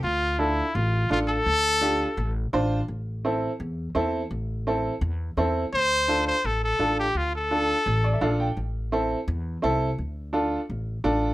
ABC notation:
X:1
M:4/4
L:1/16
Q:1/4=169
K:Dm
V:1 name="Trumpet"
F4 E4 F4 F2 A2- | A8- A2 z6 | z16 | z16 |
c6 c2 A2 A4 G2 | F2 A12 z2 | z16 | z16 |]
V:2 name="Upright piano"
z4 [DFA]2 z6 [DFA]2 z2 | z4 [DFG]2 z6 [DFc]2 z2 | z4 [CEA]2 z6 [CEA]2 z2 | z4 [CEA]2 z6 [CEA]2 z2 |
z4 [DFA]2 z6 [DFA]2 z2 | z4 [DFA]2 z4 d e [DFAf]2 g2 | z4 [CEA]2 z6 [CEA]2 z2 | z4 [DFA]2 z6 [DFA]2 z2 |]
V:3 name="Upright bass" clef=bass
D,,8 A,,,4 A,,,4 | D,,8 A,,,4 A,,,4 | A,,,8 E,,4 E,,4 | A,,,8 E,,4 E,,4 |
D,,8 A,,,4 A,,,4 | D,,8 A,,,4 B,,,4 | A,,,8 E,,4 C,,4 | D,,8 A,,,4 A,,,4 |]